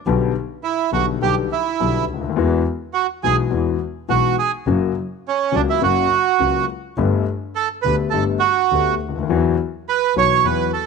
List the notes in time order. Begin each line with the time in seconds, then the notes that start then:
0.07 B1 B2 D3 G3 B3 G4
0.63 E4
0.92 B1 B2 D3 G3 B3 F#4 G4
1.22 B1 B2 D3 G3 B3 G4
1.52 E4
1.80 B1 B2 D3 G3 B3 G4
2.09 D2
2.14 C#2
2.21 D2
2.29 D#2
2.36 E2 E3 G#3 B3 F#4
2.94 F#4
3.23 B1 B2 E3 G#3 B3 F#4 G#4
3.51 E2 E3 G#3 B3 F#4
4.08 B1 B2 E3 G#3 B3 F#4
4.39 G#4
4.67 F#1 F#2 C#3 F#3 A#3 F#4
5.28 C#4
5.52 C#2 C#3 F#3 A#3 D4 F#4
5.70 E4
5.81 F#1 F#2 C#3 F#3 A#3 F#4
6.39 C#2 C#3 F#3 A#3 F#4
6.97 G1 G2 D3 A3 B3 G4
7.55 A4
7.82 D2 D3 A3 G4 B4
7.86 D2 B3
8.10 G1 G2 D3 A3 B3 G4 A4
8.39 F#4
8.71 D2 D3 A3 B3 G4
9.00 D2
9.09 C#2
9.15 D2
9.22 D#2
9.29 E2 E3 F#3 B3 F#4
9.89 B4
10.15 B1 B2 E3 F#3 B3 F#4 C#5
10.44 E2 E3 F#3 B3 F#4 B4
10.73 A4